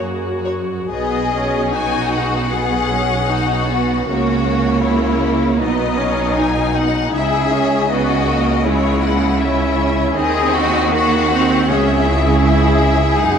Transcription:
Already playing: double bass section F#2, cello section A#3, viola section F#4, violin section A#4
0.45 violin section C#5
0.89 double bass section B1, cello section B2, viola section B3, violin section G#4 D#5
1.34 viola section C#4
1.71 viola section D#4, violin section F#4 G#5
2.13 violin section F#5
2.50 viola section B3, violin section G#4
2.91 viola section C#4
3.29 viola section D#4, violin section F#4
3.69 viola section B3
4.07 double bass section C#2, cello section C#3, viola section A#3, violin section F#4 C#5
4.48 viola section A#3
4.83 violin section E4
5.60 double bass section B1, cello section B2, viola section B3, violin section D#4 D#5
5.99 viola section C#4
6.37 viola section D#4, violin section G#5
6.76 violin section F#5
7.13 double bass section C#2, cello section C#3, viola section E4, violin section G#4 E5
7.52 viola section C#4
7.90 viola section B3, violin section F#4 D#5
8.27 viola section A#3
8.65 viola section G#3, violin section E4 C#5
9.03 violin section F#5
9.39 viola section C#4, violin section E5
10.15 double bass section D#2, cello section D#3, viola section C4, violin section G#4 D#5
10.55 violin section F#4
10.94 viola section A#3, violin section F#4 F#5
11.33 viola section C4
11.69 double bass section C#2, cello section C#3, viola section C#4, violin section G#4 E5
12.07 viola section E4
12.43 violin section E5
13.18 double bass section F#1, cello section F#2, viola section D#4, violin section F#5

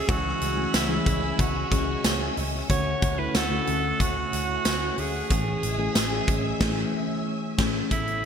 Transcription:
Already playing: fm electric piano E3 C#4 F#4, clean electric guitar G#3 C#4, string machine C#4 E5 G#5 E6, alto saxophone G#4
0.07 picked electric bass C#2, fm electric piano E3 G#3 C#4 F#4, clean electric guitar E3 G#4, alto saxophone F#4, kick, closed hi-hat
0.41 picked electric bass C#2, clean electric guitar G#3, closed hi-hat
0.57 fm electric piano E3 A3 C#4 G#4
0.74 picked electric bass C#2, alto saxophone E4, clean electric guitar F#4, snare, closed hi-hat, tambourine
0.89 fm electric piano E3 G#3 C#4 G#4, clean electric guitar G#4
1.06 picked electric bass C#2, clean electric guitar G#3, kick, closed hi-hat
1.39 picked electric bass C#2, clean electric guitar B3, alto saxophone F#4, kick, closed hi-hat
1.56 clean electric guitar C#4
1.71 picked electric bass C#2, fm electric piano E3 G#3 C#4 G#4, clean electric guitar G#3, kick, closed hi-hat
2.04 picked electric bass C#2, clean electric guitar C#4, snare, closed hi-hat, tambourine
2.37 picked electric bass C#2, clean electric guitar G#3, open hi-hat
2.68 picked electric bass D2, fm electric piano D3 A3 C#4 F#4, clean electric guitar A3 F#4, alto saxophone C#5, string machine F#5, kick, closed hi-hat
3.02 picked electric bass D2, clean electric guitar A3, kick, closed hi-hat
3.17 fm electric piano D3 A3 C#4 E4, alto saxophone B4
3.35 picked electric bass D2, clean electric guitar F#4, alto saxophone A4, snare, closed hi-hat, tambourine
3.50 fm electric piano D3 A3 C#4 F#4
3.67 picked electric bass D2, clean electric guitar A3, closed hi-hat
4.00 picked electric bass D2, clean electric guitar C#4, alto saxophone F#4, kick, closed hi-hat
4.33 picked electric bass D2, clean electric guitar A3, closed hi-hat
4.65 picked electric bass D2, clean electric guitar C#4, snare, closed hi-hat, tambourine
4.98 picked electric bass D2, clean electric guitar A3, alto saxophone G#4, open hi-hat
5.29 picked electric bass A1, fm electric piano E3 A3 C#4 G#4, clean electric guitar E3 G#4, string machine E5 G#5 E6, kick, closed hi-hat
5.63 picked electric bass A1, clean electric guitar G#3, closed hi-hat
5.78 fm electric piano E3 A3 C#4 G#4
5.95 picked electric bass A1, clean electric guitar G#4, snare, closed hi-hat, tambourine
6.11 fm electric piano E3 C#4 G#4
6.28 picked electric bass A1, clean electric guitar G#3, kick, closed hi-hat
6.60 picked electric bass A1, fm electric piano E3 A3 C#4 G#4, kick, snare, crash
7.58 picked electric bass A1, fm electric piano E3 A3 C#4 G#4, kick, snare, crash
7.90 picked electric bass A1, fm electric piano E3 B3 C#4 A4, alto saxophone E4, kick, closed hi-hat
8.08 closed hi-hat

